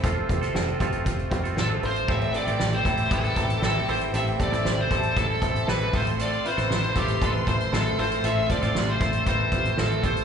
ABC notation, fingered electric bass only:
X:1
M:4/4
L:1/16
Q:1/4=117
K:Am
V:1 name="Fingered electric bass" clef=bass
F,,,2 F,,,2 F,,,2 G,,,2 F,,,2 F,,,2 A,,,2 ^G,,,2 | A,,,2 z A,,, A,,,2 A,,,2 A,,,2 A,,,2 A,,,2 ^G,,,2 | A,,,2 z A,,, A,,,2 A,,,2 A,,,2 A,,,2 A,,,2 A,,,2- | A,,,2 z A,,, A,,,2 A,,,2 A,,,2 A,,,2 A,,,2 ^G,,,2 |
A,,,2 z A,,, A,,,2 A,,,2 A,,,2 A,,,2 A,,,2 ^G,,,2 |]